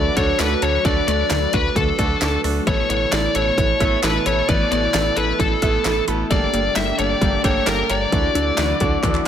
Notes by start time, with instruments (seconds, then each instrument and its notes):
Already playing: analog synth pad D3 F#3 A3 F#4 B4, grand piano A3 D4 F#4 A4, lead electric guitar D5
0.17 analog synth bass D2, grand piano A3 D4 F#4 A4, lead electric guitar C#5, synth arpeggio sound D5, kick, closed hi-hat
0.40 analog synth bass D2, synth arpeggio sound D3, grand piano A3 D4 F#4 A4, lead electric guitar B4, snare, clap, closed hi-hat
0.62 analog synth bass D2, grand piano A3 D4 F#4 A4, lead electric guitar C#5, synth arpeggio sound A5, closed hi-hat
0.85 analog synth bass D2, synth arpeggio sound D3, grand piano A3 D4 F#4 A4, lead electric guitar D5, kick, closed hi-hat
1.08 analog synth bass D2, grand piano A3 D4 F#4 A4, synth arpeggio sound A3, lead electric guitar D5, closed hi-hat
1.30 analog synth bass D2, synth arpeggio sound D3, grand piano A3 D4 F#4 A4, snare, clap, closed hi-hat
1.53 analog synth bass D2, grand piano A3 D4 F#4 B4, synth arpeggio sound F#4, lead electric guitar B4, kick, closed hi-hat
1.76 analog synth bass D2, synth arpeggio sound D3, grand piano A3 D4 F#4 A4, lead electric guitar A4, kick, closed hi-hat
1.99 analog synth bass D2, grand piano A3 D4 F#4 A4, synth arpeggio sound D5, kick, closed hi-hat
2.21 analog synth bass D2, synth arpeggio sound D3, grand piano A3 D4 F#4 A4, snare, clap, closed hi-hat
2.44 analog synth bass D2, grand piano A3 D4 F#4 A4, synth arpeggio sound A5, open hi-hat
2.67 analog synth bass A1, analog synth pad B2 E3 A3 E4 A4, synth arpeggio sound E3, grand piano A3 B3 E4 A4, lead electric guitar C#5, kick, closed hi-hat
2.89 analog synth bass A1, grand piano A3 B3 E4 A4, synth arpeggio sound B3, lead electric guitar C#5, closed hi-hat
3.12 analog synth bass A1, synth arpeggio sound E3, grand piano A3 B3 E4 A4, lead electric guitar D5, snare, clap, closed hi-hat
3.35 analog synth bass A1, grand piano A3 B3 E4 A4, synth arpeggio sound A4, lead electric guitar C#5, closed hi-hat
3.58 analog synth bass A1, synth arpeggio sound E3, grand piano A3 B3 E4 A4, kick, closed hi-hat
3.80 analog synth bass A1, grand piano A3 B3 E4 A4, synth arpeggio sound E5, kick, closed hi-hat
4.03 analog synth bass A1, synth arpeggio sound E3, grand piano A3 B3 E4 A4, lead electric guitar B4, snare, clap, closed hi-hat
4.26 analog synth bass A1, grand piano A3 B3 E4 A4, lead electric guitar C#5, synth arpeggio sound B5, closed hi-hat
4.49 analog synth bass A1, synth arpeggio sound E3, grand piano A3 B3 E4 B4, lead electric guitar D5, kick, closed hi-hat
4.72 analog synth bass A1, grand piano A3 B3 E4 F#4, synth arpeggio sound B3, lead electric guitar D5, closed hi-hat
4.94 analog synth bass A1, synth arpeggio sound E3, grand piano A3 B3 E4 A4, snare, clap, closed hi-hat
5.17 analog synth bass A1, grand piano A3 B3 E4 A4, synth arpeggio sound A4, lead electric guitar B4, closed hi-hat
5.39 analog synth bass A1, synth arpeggio sound E3, grand piano A3 B3 E4 A4, lead electric guitar A4, kick, closed hi-hat
5.62 analog synth bass A1, grand piano A3 B3 E4 A4, synth arpeggio sound E5, kick, closed hi-hat
5.85 analog synth bass A1, synth arpeggio sound E3, grand piano A3 B3 E4 A4, snare, clap, closed hi-hat
6.08 analog synth bass A1, grand piano A3 B3 E4 A4, synth arpeggio sound B5, closed hi-hat
6.31 analog synth bass G1, analog synth pad D3 G3 A#3 G4, synth arpeggio sound G3, grand piano A#3 D4 G4 A4, lead electric guitar D5, kick, closed hi-hat
6.53 analog synth bass G1, synth arpeggio sound A#3, grand piano A#3 D4 G4 A4, closed hi-hat
6.76 analog synth bass G1, synth arpeggio sound G3, grand piano A#3 D4 G4 A4, lead electric guitar E5, snare, clap, closed hi-hat
6.99 analog synth bass G1, grand piano A#3 D4 G4 A4, synth arpeggio sound A4, lead electric guitar D5, closed hi-hat
7.21 analog synth bass G1, synth arpeggio sound G3, grand piano A#3 D4 G4 A4, kick, closed hi-hat
7.44 analog synth bass G1, grand piano A#3 D4 G4 A4, lead electric guitar C#5, synth arpeggio sound G5, kick, closed hi-hat
7.67 analog synth bass G1, synth arpeggio sound G3, grand piano A#3 D4 G4 A4, lead electric guitar A#4, snare, clap, closed hi-hat
7.90 analog synth bass G1, grand piano A#3 D4 G4 A#4, lead electric guitar D5, synth arpeggio sound A#5, closed hi-hat
8.12 analog synth bass D2, analog synth pad D3 F#3 E4 F#4, synth arpeggio sound E3, grand piano D4 E4 F#4 A4, kick, closed hi-hat
8.35 analog synth bass D2, grand piano D4 E4 F#4 A4, synth arpeggio sound D4, closed hi-hat
8.58 analog synth bass D2, synth arpeggio sound E3, grand piano D4 E4 F#4 B4, snare, clap, closed hi-hat
8.80 analog synth bass D2, grand piano D4 E4 F#4 A4, synth arpeggio sound F#4, kick, closed hi-hat
9.03 analog synth bass D2, synth arpeggio sound E3, grand piano D4 E4 F#4 A4, kick, clap, closed hi-hat
9.15 clap